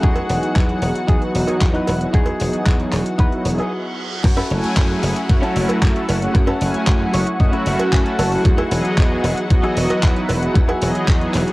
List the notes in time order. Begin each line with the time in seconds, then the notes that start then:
Already playing: F#4 F#5
0.02 E2 D#4 F#4 G#4, kick, closed hi-hat
0.15 closed hi-hat, cowbell
0.29 E1 E3 F#3 B3 D#4 G#4, open hi-hat
0.43 closed hi-hat
0.56 E2, kick, clap, closed hi-hat
0.69 F#3 B3 D#4 E4 G#4, closed hi-hat
0.82 E1, open hi-hat
0.95 closed hi-hat
1.07 E2 E3 F#3 B3 D#4 F#4 G#4, kick, closed hi-hat
1.22 closed hi-hat
1.34 E1, muted clean electric guitar stroke, open hi-hat
1.47 D#4 F#4 G#4, closed hi-hat, cowbell
1.60 E2 F#3 B3 D#4 E4 B4, kick, clap, closed hi-hat
1.73 D#4 F#4 B4, closed hi-hat
1.87 E1, open hi-hat, cowbell
2.00 F#3 B3 D#4 E4 G#4, closed hi-hat
2.13 E2 D#4 F#4 G#4, kick, closed hi-hat
2.26 closed hi-hat, cowbell
2.39 E1 E3 F#3 B3 D#4 G#4, open hi-hat
2.53 closed hi-hat
2.66 E2, kick, clap, closed hi-hat
2.79 F#3 B3 D#4 E4 G#4, closed hi-hat
2.92 E1, clap, open hi-hat
3.06 closed hi-hat
3.18 E2 F#3 B3 D#4 E4 F#4 B4, kick, closed hi-hat, reverse cymbal
3.32 closed hi-hat
3.44 E1 F#3 B3 D#4 E4 G#4, muted clean electric guitar stroke, open hi-hat
3.58 D#4 F#4 G#4, muted slap bass stroke, closed hi-hat, cowbell
4.24 F#2 F#4 F#5, muted clean electric guitar stroke, kick, closed hi-hat, crash, downlifter
4.37 C#4 E4 F#4 A4, cowbell
4.50 F#1 F#3 A3 C#4 E4 G#5, open hi-hat
4.64 muted slap bass stroke, closed hi-hat
4.77 F#2, kick, clap, closed hi-hat
4.89 F#3 A3 C#4 E4 G#4, muted clean electric guitar stroke
5.03 F#1, muted clean electric guitar stroke, open hi-hat
5.16 muted clean electric guitar stroke, closed hi-hat
5.28 F#2 F#3 A3 C#4 E4 F#4, kick, closed hi-hat
5.42 C#4 E4 F#4 A4, closed hi-hat
5.56 F#1, open hi-hat
5.69 closed hi-hat, cowbell
5.81 F#2 F#3 A3 C#4 E4 A4, muted clean electric guitar stroke, kick, clap, closed hi-hat
5.95 muted clean electric guitar stroke, closed hi-hat
6.09 F#1, open hi-hat, cowbell
6.21 F#3 A3 C#4 E4 G#4, closed hi-hat
6.34 F#2, muted clean electric guitar stroke, kick, closed hi-hat
6.47 C#4 E4 F#4 A4, cowbell
6.60 F#1 F#3 A3 C#4 E4 G#5, open hi-hat
6.74 closed hi-hat
6.87 F#2, kick, clap, closed hi-hat
7.00 F#3 A3 C#4 E4 G#4, muted clean electric guitar stroke
7.13 F#1 C#5, muted clean electric guitar stroke, open hi-hat
7.27 muted clean electric guitar stroke, closed hi-hat
7.39 F#2 F#3 A3 C#4 E4 F#4 D#5, kick, closed hi-hat
7.52 C#4 E4 F#4 A4, closed hi-hat
7.58 E5
7.66 F#1, open hi-hat
7.75 F#5, muted clean electric guitar stroke
7.79 muted slap bass stroke, closed hi-hat, cowbell
7.91 F#2 F#3 A3 C#4 E4 A4 G#5, muted clean electric guitar stroke, kick, clap, closed hi-hat
8.05 muted clean electric guitar stroke, closed hi-hat
8.19 F#1 A5, open hi-hat, cowbell
8.32 F#3 A3 C#4 E4 G#4, open hi-hat
8.44 E2, muted clean electric guitar stroke, kick, closed hi-hat
8.58 D#4 E4 F#4 G#4, cowbell
8.71 E1 E3 F#3 B3 G#4 D#5, open hi-hat
8.85 closed hi-hat
8.98 E2, kick, clap, closed hi-hat
9.10 F#3 B3 D#4 E4 G#4, muted clean electric guitar stroke
9.23 E1, muted clean electric guitar stroke, open hi-hat
9.36 muted clean electric guitar stroke, closed hi-hat
9.50 E2 E3 F#3 B3 F#4 D#5, kick, closed hi-hat
9.63 D#4 E4 F#4 G#4, closed hi-hat
9.77 E1, open hi-hat
9.90 closed hi-hat, cowbell
10.02 E2 F#3 B3 D#4 E4 B4, muted clean electric guitar stroke, kick, clap, closed hi-hat
10.15 muted clean electric guitar stroke, closed hi-hat
10.29 E1, open hi-hat, cowbell
10.42 F#3 B3 D#4 E4 G#4, closed hi-hat
10.54 E2, muted clean electric guitar stroke, kick, closed hi-hat
10.68 D#4 E4 F#4 G#4, cowbell
10.81 E1 E3 F#3 B3 G#4 D#5, open hi-hat
10.95 closed hi-hat
11.08 E2, kick, clap, closed hi-hat
11.20 F#3 B3 D#4 E4 G#4, muted clean electric guitar stroke, closed hi-hat
11.34 E1, muted clean electric guitar stroke, clap, open hi-hat
11.47 muted clean electric guitar stroke, closed hi-hat